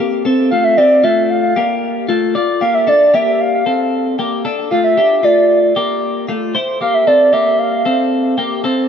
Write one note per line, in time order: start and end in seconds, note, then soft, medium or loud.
0.00 0.26 A#3 medium
0.00 0.25 G4 medium
0.25 0.52 C4 medium
0.25 0.51 A4 medium
0.50 0.78 A3 medium
0.50 0.78 F4 medium
0.50 0.66 F5 loud
0.64 0.79 E5 loud
0.77 1.04 C4 medium
0.77 1.04 G4 medium
0.77 1.05 D5 loud
1.04 1.53 A3 medium
1.04 1.53 F4 medium
1.04 1.30 E5 medium
1.30 2.05 F5 loud
1.56 2.06 A#3 medium
1.56 2.06 G4 medium
2.09 2.35 A3 medium
2.09 2.35 F4 medium
2.35 2.62 F4 medium
2.35 2.61 D5 loud
2.61 2.88 A#3 medium
2.61 2.87 G4 medium
2.61 2.76 F5 loud
2.74 2.90 E5 loud
2.87 3.14 D4 medium
2.87 3.13 A4 medium
2.87 3.16 D5 medium
3.14 3.63 A#3 medium
3.14 3.63 G4 medium
3.14 3.42 E5 loud
3.40 4.19 F5 loud
3.66 4.16 C4 medium
3.66 4.15 A4 medium
4.19 4.45 A#3 medium
4.19 4.45 G4 medium
4.45 4.71 D4 medium
4.45 4.71 A4 medium
4.71 4.98 A3 medium
4.71 4.97 F4 medium
4.71 4.83 F5 loud
4.84 5.26 E5 loud
4.97 5.23 D4 medium
4.97 5.23 G4 medium
5.23 5.73 A3 medium
5.23 5.72 F4 medium
5.23 6.02 D5 medium
5.76 6.26 A#3 medium
5.76 6.25 G4 medium
6.29 6.55 A3 medium
6.29 6.55 F4 medium
6.55 6.81 E4 medium
6.55 6.81 C5 loud
6.81 7.07 A#3 medium
6.81 7.07 G4 medium
6.81 6.96 F5 loud
6.94 7.09 E5 loud
7.07 7.33 C4 medium
7.07 7.32 A4 medium
7.07 7.34 D5 loud
7.33 7.83 A#3 medium
7.33 7.82 G4 medium
7.33 7.60 E5 loud
7.59 8.38 F5 loud
7.85 8.35 C4 medium
7.85 8.35 A4 medium
8.38 8.65 A#3 medium
8.38 8.64 G4 medium
8.64 8.88 C4 medium
8.64 8.88 A4 medium